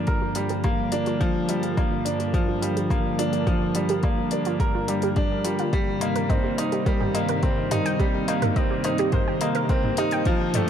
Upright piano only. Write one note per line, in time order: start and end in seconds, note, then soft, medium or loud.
0.00 1.21 F3 medium
0.00 0.36 G3 medium
0.00 0.64 A#3 medium
0.00 0.92 D4 medium
0.07 0.34 A#4 medium
0.36 0.52 G3 medium
0.64 0.91 A#3 medium
0.92 1.19 D4 medium
1.21 1.47 F3 medium
1.49 1.76 G3 medium
1.77 2.04 A#3 medium
2.05 2.32 D4 medium
2.34 2.50 F3 medium
2.62 2.78 G3 medium
2.90 3.17 A#3 medium
3.19 3.46 D4 medium
3.47 3.74 F3 medium
3.75 3.91 G3 medium
4.03 4.30 A#3 medium
4.32 4.59 D4 medium
4.60 4.87 A#4 medium
4.88 5.15 G3 medium
5.16 5.44 D4 medium
5.45 5.61 G3 medium
5.73 6.00 G3 medium
6.01 6.28 A#3 medium
6.30 6.57 C4 medium
6.58 6.85 D#4 medium
6.86 7.03 G3 medium
7.14 7.31 A#3 medium
7.43 7.70 C4 medium
7.71 7.98 D#4 loud
8.00 8.27 G3 medium
8.28 8.44 A#3 medium
8.56 8.83 C4 medium
8.85 9.12 D#4 medium
9.13 9.40 C5 medium
9.41 9.57 A#3 medium
9.70 9.97 C4 medium
9.98 10.25 D#4 loud
10.27 10.53 F3 loud
10.55 10.70 A3 medium